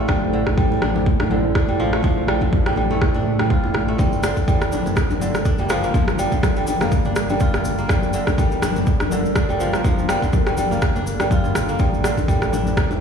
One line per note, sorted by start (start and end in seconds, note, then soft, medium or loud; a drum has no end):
0.00 0.32 D3 medium
0.00 1.93 A3 medium
0.00 3.95 A3 medium
0.00 0.82 D4 medium
0.00 3.95 E4 medium
0.00 1.12 F4 medium
0.00 3.95 A4 medium
0.00 3.95 C5 medium
0.08 0.43 A1 medium
0.08 0.38 G3 medium
0.08 kick loud
0.08 cross-stick medium
0.08 muted conga medium
0.08 high conga loud
0.08 low conga medium
0.33 1.30 D3 medium
0.47 0.79 A1 medium
0.47 kick medium
0.47 cross-stick medium
0.47 muted conga soft
0.47 high conga loud
0.58 1.36 G3 medium
0.58 kick loud
0.72 muted conga medium
0.82 1.16 A1 medium
0.82 1.55 D4 medium
0.82 cross-stick medium
0.82 high conga loud
0.95 muted conga soft
0.95 low conga loud
1.06 kick loud
1.20 1.57 A1 loud
1.20 cross-stick medium
1.20 muted conga medium
1.20 high conga loud
1.31 2.41 D3 medium
1.31 low conga loud
1.55 1.76 D#1 loud
1.55 3.15 D4 medium
1.55 kick loud
1.55 cross-stick medium
1.55 muted conga soft
1.68 2.27 G3 medium
1.68 low conga medium
1.80 2.00 A1 medium
1.80 2.03 F3 loud
1.80 muted conga medium
1.93 2.90 A3 medium
1.93 cross-stick medium
2.03 2.38 A1 medium
2.03 2.46 F3 loud
2.03 kick loud
2.03 muted conga medium
2.03 high conga loud
2.03 low conga loud
2.28 2.46 G3 loud
2.28 cross-stick medium
2.41 2.74 A1 medium
2.41 4.04 D3 medium
2.41 kick medium
2.41 muted conga soft
2.41 high conga medium
2.53 kick loud
2.66 2.76 G3 medium
2.66 cross-stick medium
2.66 muted conga medium
2.76 3.12 A1 medium
2.76 3.38 G3 medium
2.76 high conga medium
2.91 3.88 A3 medium
2.91 muted conga soft
2.91 low conga loud
3.02 kick loud
3.02 cross-stick medium
3.14 3.52 A2 medium
3.14 4.72 D4 medium
3.14 muted conga medium
3.14 low conga medium
3.39 3.98 G3 medium
3.39 cross-stick medium
3.39 high conga medium
3.50 3.76 D#1 loud
3.50 5.02 F4 medium
3.50 kick loud
3.50 muted conga soft
3.64 low conga loud
3.74 3.95 A1 medium
3.74 cross-stick medium
3.74 muted conga medium
3.88 5.90 A3 medium
3.98 4.33 G1 loud
3.98 4.29 G3 medium
3.98 11.76 G3 medium
3.98 11.76 D4 medium
3.98 13.01 A4 medium
3.98 11.76 A#4 medium
3.98 kick loud
3.98 muted conga medium
3.98 high conga loud
3.98 low conga loud
3.98 cabasa medium
4.13 cabasa soft
4.23 5.20 D3 medium
4.23 cross-stick loud
4.23 cabasa medium
4.37 4.69 G1 medium
4.37 kick medium
4.37 muted conga soft
4.37 high conga loud
4.37 cabasa soft
4.48 5.26 G3 medium
4.48 kick loud
4.48 cabasa medium
4.61 cross-stick medium
4.61 muted conga medium
4.61 cabasa soft
4.72 5.07 G1 medium
4.72 5.45 D4 medium
4.72 high conga loud
4.72 cabasa medium
4.86 muted conga soft
4.86 low conga loud
4.86 cabasa soft
4.96 kick loud
4.96 cross-stick medium
4.96 cabasa medium
5.10 5.47 G1 loud
5.10 muted conga medium
5.10 high conga loud
5.10 cabasa soft
5.21 6.31 D3 medium
5.21 low conga loud
5.21 cabasa medium
5.35 cross-stick medium
5.35 cabasa soft
5.45 5.66 D1 loud
5.45 7.05 D4 medium
5.45 kick loud
5.45 muted conga soft
5.45 cabasa medium
5.58 6.18 G3 medium
5.58 low conga loud
5.58 cabasa soft
5.69 5.91 G1 medium
5.69 5.93 F3 loud
5.69 cross-stick loud
5.69 muted conga medium
5.69 cabasa loud
5.83 6.81 A#3 medium
5.83 cabasa soft
5.94 6.28 G1 loud
5.94 6.36 F3 loud
5.94 kick loud
5.94 muted conga medium
5.94 high conga loud
5.94 low conga loud
5.94 cabasa soft
6.08 cross-stick medium
6.08 cabasa soft
6.19 6.36 G3 loud
6.19 cabasa medium
6.32 6.64 G1 medium
6.32 8.13 D3 medium
6.32 kick medium
6.32 muted conga soft
6.32 high conga loud
6.32 cabasa soft
6.43 kick loud
6.43 cross-stick loud
6.43 cabasa medium
6.56 6.66 G3 medium
6.56 muted conga medium
6.56 cabasa soft
6.67 7.02 G1 medium
6.67 7.29 G3 medium
6.67 high conga loud
6.67 cabasa loud
6.81 7.78 A#3 medium
6.81 cross-stick medium
6.81 muted conga soft
6.81 low conga loud
6.81 cabasa soft
6.92 kick loud
6.92 cabasa medium
7.05 7.42 G1 loud
7.05 8.62 D4 medium
7.05 muted conga medium
7.05 low conga loud
7.05 cabasa soft
7.16 cross-stick loud
7.16 cabasa medium
7.29 7.88 G3 medium
7.29 high conga loud
7.29 cabasa soft
7.40 7.61 D1 loud
7.40 8.92 F4 medium
7.40 kick loud
7.40 muted conga soft
7.40 cabasa medium
7.54 cross-stick medium
7.54 low conga loud
7.54 cabasa soft
7.65 7.86 G1 medium
7.65 muted conga medium
7.65 cabasa loud
7.78 9.71 A#3 medium
7.78 cabasa soft
7.89 8.24 G1 loud
7.89 8.19 G3 medium
7.89 kick loud
7.89 cross-stick loud
7.89 muted conga medium
7.89 high conga loud
7.89 low conga loud
7.89 cabasa medium
8.03 cabasa soft
8.13 9.10 D3 medium
8.13 cabasa loud
8.27 8.60 G1 medium
8.27 kick medium
8.27 cross-stick medium
8.27 muted conga soft
8.27 high conga loud
8.27 cabasa soft
8.38 9.16 G3 medium
8.38 kick loud
8.38 cabasa medium
8.52 muted conga medium
8.52 cabasa soft
8.62 8.97 G1 medium
8.62 9.35 D4 medium
8.62 cross-stick loud
8.62 high conga loud
8.62 cabasa loud
8.76 muted conga soft
8.76 low conga loud
8.76 cabasa soft
8.87 kick loud
8.87 cabasa medium
9.00 9.37 G1 loud
9.00 cross-stick medium
9.00 muted conga medium
9.00 high conga loud
9.00 cabasa soft
9.11 10.21 D3 medium
9.11 low conga loud
9.11 cabasa loud
9.25 cabasa soft
9.35 9.56 D1 medium
9.35 10.95 D4 medium
9.35 kick loud
9.35 cross-stick loud
9.35 muted conga soft
9.35 cabasa medium
9.49 10.08 G3 medium
9.49 low conga loud
9.49 cabasa soft
9.60 9.81 G1 medium
9.60 9.83 F3 loud
9.60 muted conga medium
9.60 cabasa medium
9.73 10.71 A#3 medium
9.73 cross-stick medium
9.73 cabasa soft
9.84 10.19 G1 loud
9.84 10.26 F3 loud
9.84 kick loud
9.84 muted conga soft
9.84 high conga loud
9.84 low conga loud
9.84 cabasa medium
9.99 cabasa soft
10.09 10.26 G3 loud
10.09 cross-stick loud
10.09 cabasa loud
10.22 10.55 G1 medium
10.22 11.85 D3 medium
10.22 kick medium
10.22 muted conga soft
10.22 high conga loud
10.22 cabasa soft
10.33 kick loud
10.33 cabasa medium
10.47 10.56 G3 medium
10.47 cross-stick medium
10.47 muted conga medium
10.47 cabasa soft
10.57 10.92 G1 medium
10.57 11.19 G3 medium
10.57 high conga loud
10.57 cabasa loud
10.71 11.69 A#3 medium
10.71 muted conga soft
10.71 low conga loud
10.71 cabasa soft
10.82 kick loud
10.82 cross-stick loud
10.82 cabasa medium
10.96 11.32 G1 loud
10.96 12.52 D4 medium
10.96 muted conga medium
10.96 low conga medium
10.96 cabasa soft
11.07 cabasa loud
11.20 11.79 G3 medium
11.20 cross-stick medium
11.20 high conga loud
11.20 cabasa soft
11.31 11.57 G2 medium
11.31 12.82 F4 medium
11.31 kick loud
11.31 muted conga soft
11.31 cabasa medium
11.44 low conga loud
11.44 cabasa soft
11.55 11.76 G1 medium
11.55 cross-stick loud
11.55 muted conga medium
11.55 cabasa loud
11.69 13.01 A#3 medium
11.69 cabasa soft
11.79 12.14 A1 loud
11.79 12.09 G3 medium
11.79 13.01 A3 medium
11.79 13.01 E4 medium
11.79 13.01 C5 medium
11.79 kick loud
11.79 muted conga soft
11.79 high conga loud
11.79 low conga medium
11.79 cabasa medium
11.94 cabasa soft
12.04 13.00 D3 medium
12.04 cross-stick loud
12.04 cabasa medium
12.18 12.50 A1 medium
12.18 kick medium
12.18 muted conga soft
12.18 high conga loud
12.18 cabasa soft
12.28 13.01 G3 medium
12.28 kick loud
12.28 cabasa soft
12.42 cross-stick medium
12.42 muted conga medium
12.42 cabasa soft
12.53 12.87 A1 medium
12.53 13.01 D4 medium
12.53 high conga loud
12.53 cabasa medium
12.67 muted conga soft
12.67 low conga loud
12.67 cabasa soft
12.77 kick loud
12.77 cross-stick loud
12.77 cabasa medium
12.91 13.01 A1 loud
12.91 muted conga medium
12.91 high conga loud
12.91 cabasa soft